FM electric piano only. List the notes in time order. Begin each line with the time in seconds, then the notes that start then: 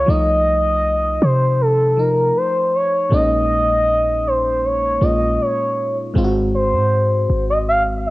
0.06 F3 A3
0.10 D#4
1.97 F3 D#4
3.10 A#2 G#3 A#3 C#4
3.14 D#4
5.00 A#2 G#3 A#3 C#4 F4
6.14 G#2 G#3 C4
6.18 F4
6.24 F#4